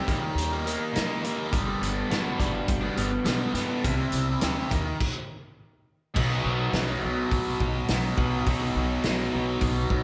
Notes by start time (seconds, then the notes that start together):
Already playing: G3 G4
0.05 D#2 D#3 G3 A#3 D#4, kick, closed hi-hat
0.21 muted overdriven electric guitar stroke
0.35 D#2 D#3, closed hi-hat
0.49 G3 A#3 D#4
0.63 D#3 G3 A#3 D#4, closed hi-hat
0.80 muted overdriven electric guitar stroke
0.93 D#3 G3 A#3 D#4, snare, closed hi-hat
1.22 D#3 G3 A#3 D#4, closed hi-hat
1.37 G3 A#3 D#4
1.52 G1 G2 D3 G3 B3 D4, kick, closed hi-hat
1.66 G3 B3 D4
1.81 G1 B3, closed hi-hat
2.08 G1 G2 D3 G3 B3 F#4, snare, closed hi-hat
2.12 D4
2.38 G1 D3 G3 B3 D4, kick, snare, closed hi-hat
2.52 muted overdriven electric guitar stroke
2.68 G1 G3, kick, closed hi-hat
2.81 G3 B3 D4
2.95 G1 D3 G3 B3 D4, closed hi-hat
3.10 muted overdriven electric guitar stroke
3.24 B1 G2 D3 G3 B3 D4, snare, closed hi-hat
3.54 G2 D3 G3 B3 D4, snare, closed hi-hat
3.69 G3 B3 D4
3.83 C2 C3 G3 C4 E4, kick, closed hi-hat
3.97 G3 C4 E4
4.12 C2, closed hi-hat
4.39 D2 C3 G3 C4 E4, snare, closed hi-hat
4.44 G4
4.69 D#2 D#3 G3 A#3 D#4, kick, closed hi-hat
4.84 muted overdriven electric guitar stroke
5.00 kick, crash
6.14 B1 B2 F#3 B3, kick, crash
6.18 D#4 F#4
6.44 B1
6.73 B1, snare, open hi-hat
7.02 B1 F#3 B3 D#4
7.06 B2
7.31 B1, kick, open hi-hat
7.60 B1, kick
7.88 B1 B2 F#3 B3 D#4, snare, open hi-hat
8.17 B1 B2 F#3 B3 D#4 F#4, kick
8.45 B1 B2 F#3 B3 D#4, kick, open hi-hat
8.50 F#4
8.75 B1
9.04 B1, snare, open hi-hat
9.32 B1 F#3 B3 D#4
9.36 B2
9.61 B1, kick, open hi-hat
9.90 B1, kick